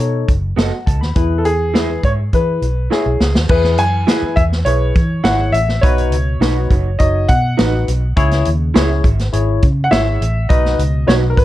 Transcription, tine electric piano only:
0.00 0.31 D#4 medium
0.00 0.31 A4 medium
0.00 0.31 C#5 medium
0.58 0.72 D#5 medium
0.72 0.86 F#5 medium
0.86 1.01 A5 medium
1.01 1.29 B5 medium
1.16 2.00 E3 medium
1.16 1.48 E4 medium
1.16 1.48 G#4 medium
1.16 1.48 B4 medium
1.74 2.06 E4 medium
1.74 2.06 G#4 medium
1.74 2.07 B4 medium
2.33 2.65 E4 medium
2.33 2.65 G#4 medium
2.33 2.65 B4 medium
2.91 3.23 E4 medium
2.91 3.23 G#4 medium
2.91 3.23 C#5 medium
3.50 4.34 E3 medium
3.50 3.82 E4 medium
3.50 3.82 G#4 medium
3.50 3.82 B4 loud
4.08 4.40 E4 medium
4.08 4.40 G#4 medium
4.08 4.40 B4 medium
4.66 4.98 E4 medium
4.66 4.99 G#4 medium
4.66 4.99 B4 medium
5.25 5.57 E4 medium
5.25 5.57 G#4 medium
5.25 5.57 C#5 medium
5.84 6.67 B2 medium
5.84 6.15 D#4 medium
5.84 6.15 F#4 medium
5.84 6.15 B4 loud
6.41 6.73 D#4 medium
6.41 6.73 F#4 medium
6.41 6.73 B4 medium
6.99 7.31 D#4 medium
6.99 7.32 F#4 medium
6.99 7.32 C#5 medium
7.57 7.89 D#4 medium
7.57 7.90 F#4 medium
7.57 7.90 B4 medium
8.16 9.00 C#3 medium
8.16 8.48 E4 loud
8.16 8.48 G#4 loud
8.16 8.49 C#5 loud
8.75 9.07 E4 medium
8.75 9.07 G#4 medium
8.75 9.07 C#5 medium
9.33 9.65 E4 medium
9.33 9.65 G#4 medium
9.33 9.65 C#5 medium
9.91 10.23 E4 medium
9.91 10.23 G#4 medium
9.91 10.23 C#5 medium
10.49 11.33 B2 medium
10.49 10.81 D#4 loud
10.49 10.81 F#4 medium
10.49 10.82 B4 loud
11.07 11.39 D#4 medium
11.07 11.39 F#4 medium
11.07 11.39 B4 medium

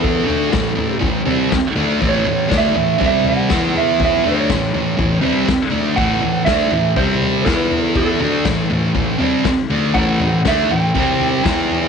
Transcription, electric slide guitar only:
0.02 0.98 A4 medium
2.09 2.56 C#5 medium
2.58 3.05 E5 medium
3.06 3.27 E5 medium
3.28 3.73 F#5 loud
3.77 3.99 E5 medium
4.04 4.28 E5 medium
4.29 5.25 C#5 medium
5.25 5.71 B4 medium
5.96 6.48 F#5 loud
6.45 6.98 E5 loud
6.96 7.44 C5 medium
7.45 7.92 B4 medium
7.97 8.92 A4 medium
9.94 10.46 F#5 loud
10.48 10.70 E5 medium
10.71 11.88 G5 loud

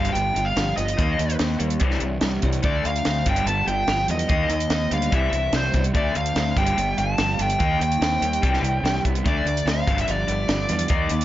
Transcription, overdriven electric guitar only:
0.00 0.14 G2 medium
0.00 0.13 D3 medium
0.00 0.15 F3 medium
0.15 0.33 G2 medium
0.15 0.34 D3 medium
0.34 0.54 G2 medium
0.34 0.54 D3 medium
0.56 0.75 G2 medium
0.56 0.75 D3 medium
0.77 0.96 G2 medium
0.77 0.96 D3 medium
0.97 1.17 D#3 medium
0.97 1.18 A#3 medium
0.97 1.18 D#4 loud
1.19 1.38 D#3 medium
1.19 1.38 A#3 medium
1.39 1.58 D#3 medium
1.39 1.58 A#3 medium
1.59 1.78 D#3 medium
1.59 1.79 A#3 medium
1.80 2.00 C3 medium
1.80 2.00 E3 medium
1.80 2.01 G3 medium
2.01 2.20 C3 medium
2.01 2.20 E3 medium
2.21 2.41 C3 medium
2.21 2.41 E3 medium
2.43 2.62 C3 medium
2.43 2.62 E3 medium
2.62 2.83 D3 medium
2.62 2.83 A3 medium
2.62 2.83 D4 medium
2.85 3.03 D3 medium
2.85 3.04 A3 medium
3.06 3.24 D3 medium
3.06 3.24 A3 medium
3.26 3.45 G2 medium
3.26 3.46 D3 medium
3.26 3.46 F3 medium
3.47 3.65 G2 medium
3.47 3.66 D3 medium
3.68 3.86 G2 medium
3.68 3.86 D3 medium
3.89 4.07 G2 medium
3.89 4.07 D3 medium
4.09 4.28 G2 medium
4.09 4.28 D3 medium
4.29 4.48 D#3 medium
4.29 4.48 A#3 medium
4.29 4.49 D#4 medium
4.49 4.68 D#3 medium
4.49 4.68 A#3 medium
4.71 4.89 D#3 medium
4.71 4.89 A#3 medium
4.91 5.10 D#3 medium
4.91 5.10 A#3 medium
5.11 5.31 C3 medium
5.11 5.31 E3 medium
5.11 5.31 G3 medium
5.33 5.52 C3 medium
5.33 5.52 E3 medium
5.54 5.72 C3 medium
5.54 5.73 E3 medium
5.74 5.92 C3 medium
5.74 5.93 E3 medium
5.94 6.14 D3 medium
5.94 6.14 A3 medium
5.94 6.14 D4 medium
6.16 6.34 D3 medium
6.16 6.34 A3 medium
6.36 6.55 D3 medium
6.36 6.55 A3 medium
6.57 6.76 G2 medium
6.57 6.76 D3 medium
6.57 6.77 F3 loud
6.79 6.97 G2 medium
6.79 6.97 D3 medium
6.98 7.17 G2 medium
6.98 7.17 D3 medium
7.19 7.37 G2 medium
7.19 7.38 D3 medium
7.39 7.58 G2 medium
7.39 7.58 D3 medium
7.59 7.79 D#3 medium
7.59 7.79 A#3 medium
7.59 7.79 D#4 medium
7.80 7.99 D#3 medium
7.80 7.99 A#3 medium
8.01 8.20 D#3 medium
8.01 8.20 A#3 medium
8.22 8.40 D#3 medium
8.22 8.41 A#3 medium
8.42 8.62 C3 medium
8.42 8.62 E3 medium
8.42 8.62 G3 medium
8.64 8.82 C3 medium
8.64 8.82 E3 medium
8.84 9.02 C3 medium
8.84 9.02 E3 medium
9.05 9.23 C3 medium
9.05 9.23 E3 medium
9.24 9.44 D3 medium
9.24 9.44 A3 medium
9.24 9.45 D4 medium
9.46 9.65 D3 medium
9.46 9.65 A3 medium
9.66 9.85 D3 medium
9.66 9.85 A3 medium
9.87 10.06 G2 medium
9.87 10.07 D3 loud
9.87 10.07 F3 loud
10.08 10.26 G2 medium
10.08 10.27 D3 medium
10.27 10.46 G2 medium
10.27 10.47 D3 medium
10.48 10.67 G2 medium
10.48 10.67 D3 medium
10.69 10.88 G2 medium
10.69 10.88 D3 medium
10.89 11.09 D#3 medium
10.89 11.10 A#3 medium
10.89 11.10 D#4 medium
11.10 11.25 D#3 medium
11.10 11.25 A#3 medium

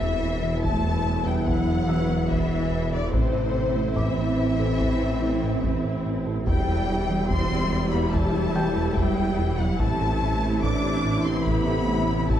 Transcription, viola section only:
0.00 3.10 B3 medium
0.00 3.10 E4 medium
3.13 6.43 C4 medium
3.13 6.43 E4 medium
6.47 9.80 G3 medium
6.47 9.77 E4 medium
9.80 12.40 C3 medium
9.80 12.40 E4 medium

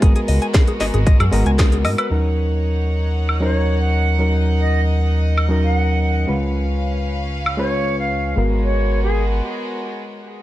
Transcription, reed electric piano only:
0.01 1.29 G#3 medium
0.01 1.29 B3 medium
0.01 1.30 F#4 medium
0.01 1.30 A#4 medium
1.32 2.07 G#3 medium
1.32 2.08 B3 medium
1.32 2.08 F#4 medium
1.32 2.08 A#4 loud
2.10 3.38 F#3 medium
2.10 3.38 C#4 medium
2.10 3.38 D#4 medium
2.10 3.39 A#4 medium
3.40 4.16 F#3 medium
3.40 4.16 C#4 medium
3.40 4.17 D#4 medium
3.40 4.17 A#4 medium
4.19 5.46 F#3 medium
4.19 5.47 C#4 medium
4.19 5.47 D#4 medium
4.19 5.47 A#4 medium
5.49 6.24 F#3 medium
5.49 6.25 C#4 medium
5.49 6.25 D#4 medium
5.49 6.26 A#4 medium
6.27 7.55 G#3 medium
6.27 7.55 C#4 medium
6.27 7.56 F4 medium
6.27 7.56 B4 medium
7.57 8.33 G#3 medium
7.57 8.34 C#4 medium
7.57 8.34 F4 medium
7.57 8.34 B4 medium
8.36 9.41 G#3 medium
8.36 9.41 B3 medium
8.36 9.42 F#4 medium
8.36 9.42 A#4 medium

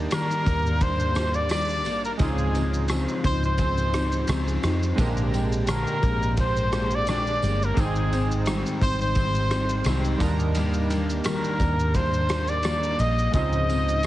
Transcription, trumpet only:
0.14 0.84 A#4 loud
0.82 1.37 C5 loud
1.35 1.51 D5 medium
1.52 2.01 D5 loud
2.05 2.12 A#4 medium
2.21 2.86 G#4 medium
3.26 3.43 C5 loud
3.46 4.45 C5 loud
5.70 6.35 A#4 medium
6.40 6.97 C5 loud
6.95 7.09 D5 loud
7.10 7.66 D5 loud
7.64 7.82 A#4 medium
7.80 8.48 G#4 medium
8.83 9.00 C5 loud
9.02 10.01 C5 loud
11.26 11.97 A#4 medium
11.96 12.50 C5 loud
12.49 13.02 D5 loud
13.00 13.34 D#5 loud
13.34 14.06 D#5 loud

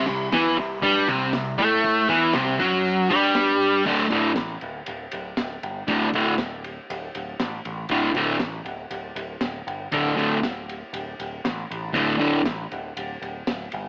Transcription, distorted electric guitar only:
0.07 0.28 C3 medium
0.33 0.57 E3 loud
0.57 0.78 C3 medium
0.82 1.07 G3 loud
1.08 1.33 C3 medium
1.34 1.54 C3 medium
1.58 2.08 A3 loud
2.09 2.33 E3 medium
2.34 2.59 C3 loud
2.59 3.09 F#3 medium
3.09 3.84 G3 loud
3.86 4.06 D2 medium
3.86 4.06 A2 loud
3.86 4.06 D3 loud
4.10 4.31 D2 medium
4.10 4.31 A2 medium
4.10 4.31 D3 medium
5.87 6.08 D2 medium
5.87 6.08 A2 loud
5.87 6.09 D3 medium
6.14 6.34 D2 medium
6.14 6.34 A2 medium
6.14 6.34 D3 loud
7.91 8.11 D2 loud
7.91 8.11 A2 loud
7.91 8.11 D3 loud
8.16 8.36 D2 medium
8.16 8.36 A2 medium
8.16 8.37 D3 loud
9.92 10.13 D2 medium
9.92 10.13 A2 medium
9.92 10.13 D3 loud
10.16 10.37 D2 medium
10.16 10.38 A2 medium
10.16 10.38 D3 medium
11.93 12.15 D2 medium
11.93 12.15 A2 medium
11.93 12.16 D3 loud
12.18 12.40 D2 medium
12.18 12.41 A2 medium
12.18 12.41 D3 medium

